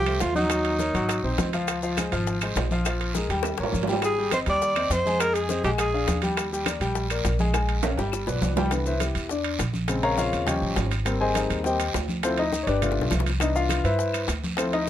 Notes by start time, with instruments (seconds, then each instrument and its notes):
Already playing: upright bass C2, alto saxophone G4
0.06 grand piano A3 A4 C5, high conga, high timbale, claves
0.20 upright bass D#2, alto saxophone F4, high bongo, low bongo, high conga, high timbale, low timbale, short guiro, maracas
0.35 grand piano F#3 F#4 F#5, alto saxophone D#4, high conga, short guiro, maracas
0.49 grand piano F#3 F#4, high bongo, high conga, high timbale, claves, maracas
0.64 high bongo, high conga, high timbale
0.79 grand piano A#3 A#4 C#5, high bongo, high conga, short guiro, maracas
0.94 upright bass G#1, grand piano F#3 F#4 F#5, high bongo, high conga, high timbale, short guiro, maracas
1.08 high bongo, high conga, high timbale, long guiro, claves, maracas
1.23 upright bass A#1, grand piano C4 C5 D#5, high conga
1.38 upright bass C#2, high bongo, low bongo, high conga, high timbale, low timbale, short guiro, maracas
1.53 grand piano F3 F4 F5, high bongo, high conga, high timbale, short guiro, maracas
1.68 high bongo, high timbale, long guiro, claves, maracas
1.83 grand piano F3 F4 F5, high conga, maracas
1.97 grand piano G#3 G#4 C5, high bongo, high conga, high timbale, short guiro, claves, maracas
2.12 upright bass G#1, grand piano F3 F4 F5, high timbale, short guiro, maracas
2.27 high bongo, high conga, long guiro, maracas
2.41 grand piano G#3 G#4 C5, high conga, high timbale, claves, maracas
2.56 upright bass A#1, high bongo, low bongo, high conga, high timbale, low timbale, short guiro, maracas
2.71 grand piano F3 F4 F5, high conga, short guiro, maracas
2.85 grand piano F3 F4 F5, high bongo, high timbale, long guiro, claves, maracas
3.00 high bongo, high conga, high timbale
3.15 grand piano G#3 G#4 A#4, high bongo, high conga, short guiro, maracas
3.29 upright bass D#2, grand piano G3 G4 G5, high bongo, high timbale, short guiro, maracas
3.43 high bongo, high conga, high timbale, long guiro, claves, maracas
3.58 upright bass A1, grand piano A#3 A#4 C#5, high bongo, high conga
3.63 low timbale
3.72 upright bass G#1, high conga, low timbale, short guiro, maracas
3.83 low timbale
3.87 grand piano G3 G4 G5, low bongo, short guiro, maracas
3.93 low timbale
4.02 alto saxophone G#4, high bongo, high conga, high timbale, long guiro, claves, maracas
4.18 grand piano G3 G4 G5, high conga
4.31 grand piano C4 C5 D#5, alto saxophone C5, high bongo, high conga, high timbale, short guiro, claves, maracas
4.46 upright bass D#2, grand piano G3 G4 G5, alto saxophone D5, high timbale, short guiro, maracas
4.61 high bongo, high conga, long guiro, maracas
4.76 grand piano C4 C5 D#5, high conga, high timbale, claves
4.90 upright bass F2, alto saxophone C5, high bongo, low bongo, high conga, high timbale, short guiro, maracas
5.06 grand piano G#3 G#4 G#5, high conga, short guiro, maracas
5.20 grand piano G#3 G#4 G#5, alto saxophone A#4, high bongo, high timbale, long guiro, claves, maracas
5.34 alto saxophone G#4, high bongo, high conga, high timbale, maracas
5.49 grand piano C4 C5 D#5, high bongo, high conga, short guiro, maracas
5.63 upright bass A#1, grand piano G#3 G#4 G#5, alto saxophone G4, high bongo, high timbale, short guiro, maracas
5.78 alto saxophone G#4, high bongo, high conga, high timbale, long guiro, claves, maracas
5.94 grand piano D4 D5 F5, high conga
6.07 upright bass D#2, high bongo, low bongo, high conga, high timbale, short guiro, maracas
6.22 grand piano G3 G4 G5, high bongo, high conga, high timbale, short guiro, maracas
6.37 high bongo, high timbale, long guiro, claves, maracas
6.52 grand piano G3 G4 G5, high conga, maracas
6.66 grand piano A#3 A#4 D5, high bongo, high conga, high timbale, short guiro, claves, maracas
6.80 upright bass A#1, grand piano G3 G4 G5, high conga, high timbale, short guiro, maracas
6.95 high bongo, high conga, long guiro, maracas
7.10 grand piano A#3 A#4 D5, high conga, high timbale, claves, maracas
7.24 upright bass A#1, high bongo, low bongo, high conga, high timbale, short guiro, maracas
7.39 grand piano G#3 G#4 G#5, high conga, short guiro, maracas
7.54 grand piano G#3 G#4 G#5, high bongo, high timbale, long guiro, claves, maracas
7.69 high conga, high timbale
7.83 grand piano C#4 C#5 F5, low bongo, high conga, high timbale, short guiro, maracas
7.97 upright bass G1, grand piano G3 G4 G5, low bongo, high timbale, short guiro, maracas
8.12 low bongo, high conga, long guiro, claves, maracas
8.27 upright bass B1, grand piano B3 B4 D5, low bongo, high conga, low timbale, maracas
8.41 upright bass C2, low bongo, high conga, low timbale, short guiro, maracas
8.56 grand piano G3 G4 G5, low bongo, high conga, low timbale, short guiro, maracas
8.71 grand piano D3 E3 B3, high bongo, high timbale, long guiro, maracas
8.86 grand piano E4 B4 C5 E5, high conga, maracas
9.00 grand piano B3 E4 G4, high bongo, high conga, high timbale, short guiro, maracas
9.15 upright bass E2, high conga, high timbale, short guiro, maracas
9.29 grand piano D4 D5, high bongo, high conga, long guiro, maracas
9.44 high conga, high timbale
9.59 upright bass A#1, high bongo, low bongo, high conga, high timbale, short guiro, maracas
9.73 high conga, short guiro, maracas
9.88 grand piano C#3 G#3 C4, high bongo, high timbale, long guiro, maracas
10.03 grand piano A#4 C#5 F5 A#5, high bongo, high conga, high timbale
10.17 grand piano F4 A#4 C#5 F5, high bongo, high conga, short guiro, maracas
10.32 upright bass D#2, high bongo, high conga, high timbale, short guiro, maracas
10.47 grand piano F3 G3 C#4 G4 C#5 D#5 G5, high bongo, high conga, low conga, high timbale, long guiro, maracas
10.62 upright bass A1, high conga, low conga
10.76 upright bass G#1, high bongo, low bongo, high conga, high timbale, low timbale, short guiro, maracas
10.91 high bongo, high timbale, short guiro, maracas
11.05 grand piano G3 A#3 C4, high bongo, high conga, high timbale, long guiro, maracas
11.21 grand piano G#4 C5 D#5 G#5, high conga
11.35 grand piano D#4 G#4 C5 D#5, high bongo, high conga, high timbale, short guiro, maracas
11.50 upright bass D#2, high conga, high timbale, short guiro, maracas
11.64 grand piano G3 A#3 C4 G4 C5 D#5 G5, high bongo, high conga, long guiro, maracas
11.79 high conga, high timbale, maracas
11.94 upright bass D2, high bongo, low bongo, high conga, high timbale, low timbale, short guiro, maracas
12.08 high conga, short guiro, maracas
12.23 grand piano F3 C4 E4 F4 A4 C5, high bongo, high timbale, long guiro, maracas
12.38 grand piano D#4 D#5, high bongo, high conga, high timbale
12.52 high bongo, high conga, short guiro, maracas
12.63 upright bass G1, grand piano C#5
12.67 grand piano D4 G4 B4 D5, high bongo, high conga, high timbale, short guiro, maracas
12.82 grand piano A3 B3 F4, high bongo, high conga, low conga, high timbale, long guiro, maracas
12.92 high bongo
12.97 upright bass B1, high conga
13.01 high bongo
13.11 upright bass C2, low bongo, high conga, high timbale, low timbale, short guiro, maracas
13.20 low bongo
13.26 high conga, high timbale, short guiro, maracas
13.30 low bongo
13.40 grand piano E3 B3 D4 D#4 D#5, high bongo, high conga, high timbale, long guiro, claves, maracas
13.55 grand piano F4 F5, high conga, maracas
13.69 high bongo, high conga, high timbale, short guiro, claves, maracas
13.84 upright bass G2, grand piano E4 B4 C5 E5, high conga, high timbale, short guiro, maracas
13.99 high bongo, high conga, long guiro, maracas
14.13 high conga, high timbale, claves, maracas
14.28 upright bass D2, high bongo, low bongo, high conga, high timbale, short guiro, maracas
14.43 high conga, short guiro, maracas
14.57 grand piano F3 C4 E4 F4 A4 C5, high bongo, high conga, high timbale, long guiro, claves, maracas
14.73 grand piano D#4 D#5, high bongo, high conga, high timbale